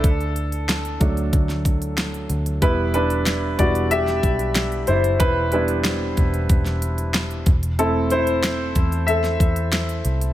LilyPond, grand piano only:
<<
  \new Staff \with { instrumentName = "Grand piano" } { \time 4/4 \key e \minor \tempo 4 = 93 <d' a'>2~ <d' a'>8 r4. | b'8 <d' b'>4 <fis' d''>8 <g' e''>4. <e' c''>8 | <e' b'>8 <d' b'>2 r4. | a'8 <e' c''>4. <a' e''>4. r8 | }
  \new Staff \with { instrumentName = "Grand piano" } { \time 4/4 \key e \minor r4. <fis a d'>4. r4 | <g b e'>4. <g b e'>8 r2 | r8 <g b e'>8 r2. | <a c' e'>8 r2. r8 | }
>>